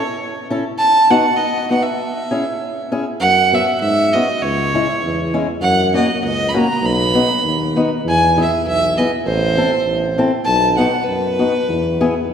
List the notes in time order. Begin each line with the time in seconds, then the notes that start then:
Already playing: C#5
0.50 C#4 E4 A4
0.78 A5
1.10 B3 D#4 F#4 F#5
1.36 D#5
1.70 B3 D#4 F#4 F#5
1.82 E5
2.31 C#4 E4 G#4
2.92 C#4 E4 G#4
3.20 F#2 F#5
3.53 B3 C#4 F#4 E5
3.80 G#2 E5
4.13 B3 C#4 F#4 D#5
4.41 C#2 C#5
4.74 G#3 C#4 E4
5.03 E2
5.34 G#3 C#4 E4
5.61 F#2 F#5
5.94 A#3 C#4 F#4 D#5
6.23 C#2 D#5
6.49 B5
6.54 A#3 C#4 F#4
6.58 A#5
6.82 B1 B5
7.14 B3 D#4 F#4
7.43 D#2
7.76 B3 D#4 F#4
8.04 E2 G#5
8.37 B3 E4 G#4 E5
8.65 B1 E5
8.97 B3 E4 G#4 D#5
9.25 A1 C5
9.58 C4 E4 A4
9.86 A1
10.18 C4 E4 A4
10.45 B1 A5
10.77 B3 D#4 F#4 F#5
11.04 F#2 B4
11.39 B3 D#4 F#4
11.68 E2
12.01 B3 E4 G#4
12.28 B1